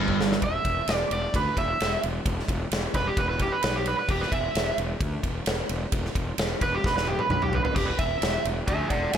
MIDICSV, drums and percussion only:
0, 0, Header, 1, 2, 480
1, 0, Start_track
1, 0, Tempo, 458716
1, 443, Time_signature, 4, 2, 24, 8
1, 9601, End_track
2, 0, Start_track
2, 0, Title_t, "Drums"
2, 83, Note_on_c, 9, 36, 68
2, 188, Note_off_c, 9, 36, 0
2, 215, Note_on_c, 9, 38, 86
2, 320, Note_off_c, 9, 38, 0
2, 336, Note_on_c, 9, 38, 88
2, 438, Note_on_c, 9, 51, 82
2, 440, Note_off_c, 9, 38, 0
2, 440, Note_on_c, 9, 36, 102
2, 543, Note_off_c, 9, 51, 0
2, 545, Note_off_c, 9, 36, 0
2, 678, Note_on_c, 9, 51, 72
2, 679, Note_on_c, 9, 36, 84
2, 782, Note_off_c, 9, 51, 0
2, 784, Note_off_c, 9, 36, 0
2, 915, Note_on_c, 9, 51, 83
2, 931, Note_on_c, 9, 38, 106
2, 1020, Note_off_c, 9, 51, 0
2, 1035, Note_off_c, 9, 38, 0
2, 1161, Note_on_c, 9, 51, 74
2, 1266, Note_off_c, 9, 51, 0
2, 1401, Note_on_c, 9, 36, 100
2, 1405, Note_on_c, 9, 51, 91
2, 1506, Note_off_c, 9, 36, 0
2, 1510, Note_off_c, 9, 51, 0
2, 1641, Note_on_c, 9, 36, 75
2, 1643, Note_on_c, 9, 51, 69
2, 1746, Note_off_c, 9, 36, 0
2, 1748, Note_off_c, 9, 51, 0
2, 1887, Note_on_c, 9, 51, 94
2, 1902, Note_on_c, 9, 38, 98
2, 1991, Note_off_c, 9, 51, 0
2, 2007, Note_off_c, 9, 38, 0
2, 2127, Note_on_c, 9, 51, 72
2, 2231, Note_off_c, 9, 51, 0
2, 2360, Note_on_c, 9, 51, 94
2, 2361, Note_on_c, 9, 36, 100
2, 2465, Note_off_c, 9, 51, 0
2, 2466, Note_off_c, 9, 36, 0
2, 2506, Note_on_c, 9, 38, 31
2, 2600, Note_on_c, 9, 36, 84
2, 2603, Note_on_c, 9, 51, 75
2, 2610, Note_off_c, 9, 38, 0
2, 2704, Note_off_c, 9, 36, 0
2, 2708, Note_off_c, 9, 51, 0
2, 2840, Note_on_c, 9, 51, 92
2, 2856, Note_on_c, 9, 38, 105
2, 2945, Note_off_c, 9, 51, 0
2, 2960, Note_off_c, 9, 38, 0
2, 3077, Note_on_c, 9, 36, 77
2, 3078, Note_on_c, 9, 51, 73
2, 3182, Note_off_c, 9, 36, 0
2, 3183, Note_off_c, 9, 51, 0
2, 3316, Note_on_c, 9, 51, 77
2, 3317, Note_on_c, 9, 36, 100
2, 3421, Note_off_c, 9, 51, 0
2, 3422, Note_off_c, 9, 36, 0
2, 3550, Note_on_c, 9, 51, 65
2, 3556, Note_on_c, 9, 36, 77
2, 3655, Note_off_c, 9, 51, 0
2, 3661, Note_off_c, 9, 36, 0
2, 3793, Note_on_c, 9, 51, 89
2, 3809, Note_on_c, 9, 38, 101
2, 3898, Note_off_c, 9, 51, 0
2, 3913, Note_off_c, 9, 38, 0
2, 4034, Note_on_c, 9, 51, 70
2, 4139, Note_off_c, 9, 51, 0
2, 4275, Note_on_c, 9, 49, 85
2, 4276, Note_on_c, 9, 36, 101
2, 4380, Note_off_c, 9, 49, 0
2, 4381, Note_off_c, 9, 36, 0
2, 4418, Note_on_c, 9, 38, 33
2, 4520, Note_on_c, 9, 36, 81
2, 4522, Note_off_c, 9, 38, 0
2, 4523, Note_on_c, 9, 51, 71
2, 4624, Note_off_c, 9, 36, 0
2, 4628, Note_off_c, 9, 51, 0
2, 4763, Note_on_c, 9, 51, 90
2, 4779, Note_on_c, 9, 38, 100
2, 4868, Note_off_c, 9, 51, 0
2, 4883, Note_off_c, 9, 38, 0
2, 5001, Note_on_c, 9, 51, 69
2, 5105, Note_off_c, 9, 51, 0
2, 5238, Note_on_c, 9, 36, 105
2, 5238, Note_on_c, 9, 51, 90
2, 5342, Note_off_c, 9, 36, 0
2, 5342, Note_off_c, 9, 51, 0
2, 5477, Note_on_c, 9, 36, 79
2, 5477, Note_on_c, 9, 51, 74
2, 5582, Note_off_c, 9, 36, 0
2, 5582, Note_off_c, 9, 51, 0
2, 5712, Note_on_c, 9, 51, 97
2, 5728, Note_on_c, 9, 38, 106
2, 5817, Note_off_c, 9, 51, 0
2, 5832, Note_off_c, 9, 38, 0
2, 5956, Note_on_c, 9, 51, 76
2, 6060, Note_off_c, 9, 51, 0
2, 6194, Note_on_c, 9, 51, 95
2, 6198, Note_on_c, 9, 36, 93
2, 6299, Note_off_c, 9, 51, 0
2, 6302, Note_off_c, 9, 36, 0
2, 6333, Note_on_c, 9, 38, 31
2, 6438, Note_off_c, 9, 38, 0
2, 6439, Note_on_c, 9, 36, 83
2, 6440, Note_on_c, 9, 51, 74
2, 6544, Note_off_c, 9, 36, 0
2, 6545, Note_off_c, 9, 51, 0
2, 6675, Note_on_c, 9, 51, 92
2, 6690, Note_on_c, 9, 38, 105
2, 6779, Note_off_c, 9, 51, 0
2, 6795, Note_off_c, 9, 38, 0
2, 6919, Note_on_c, 9, 51, 71
2, 6920, Note_on_c, 9, 36, 79
2, 7023, Note_off_c, 9, 51, 0
2, 7024, Note_off_c, 9, 36, 0
2, 7160, Note_on_c, 9, 36, 96
2, 7176, Note_on_c, 9, 38, 57
2, 7265, Note_off_c, 9, 36, 0
2, 7280, Note_off_c, 9, 38, 0
2, 7294, Note_on_c, 9, 38, 58
2, 7399, Note_off_c, 9, 38, 0
2, 7399, Note_on_c, 9, 48, 69
2, 7504, Note_off_c, 9, 48, 0
2, 7522, Note_on_c, 9, 48, 67
2, 7626, Note_off_c, 9, 48, 0
2, 7640, Note_on_c, 9, 47, 85
2, 7745, Note_off_c, 9, 47, 0
2, 7765, Note_on_c, 9, 45, 82
2, 7870, Note_off_c, 9, 45, 0
2, 7878, Note_on_c, 9, 43, 94
2, 7983, Note_off_c, 9, 43, 0
2, 8003, Note_on_c, 9, 43, 88
2, 8108, Note_off_c, 9, 43, 0
2, 8118, Note_on_c, 9, 49, 81
2, 8118, Note_on_c, 9, 55, 73
2, 8120, Note_on_c, 9, 36, 104
2, 8222, Note_off_c, 9, 49, 0
2, 8222, Note_off_c, 9, 55, 0
2, 8224, Note_off_c, 9, 36, 0
2, 8356, Note_on_c, 9, 51, 71
2, 8360, Note_on_c, 9, 36, 87
2, 8460, Note_off_c, 9, 51, 0
2, 8464, Note_off_c, 9, 36, 0
2, 8599, Note_on_c, 9, 51, 86
2, 8615, Note_on_c, 9, 38, 96
2, 8704, Note_off_c, 9, 51, 0
2, 8719, Note_off_c, 9, 38, 0
2, 8844, Note_on_c, 9, 51, 71
2, 8949, Note_off_c, 9, 51, 0
2, 9079, Note_on_c, 9, 36, 102
2, 9080, Note_on_c, 9, 51, 86
2, 9184, Note_off_c, 9, 36, 0
2, 9185, Note_off_c, 9, 51, 0
2, 9315, Note_on_c, 9, 51, 67
2, 9316, Note_on_c, 9, 36, 79
2, 9420, Note_off_c, 9, 51, 0
2, 9421, Note_off_c, 9, 36, 0
2, 9556, Note_on_c, 9, 51, 90
2, 9601, Note_off_c, 9, 51, 0
2, 9601, End_track
0, 0, End_of_file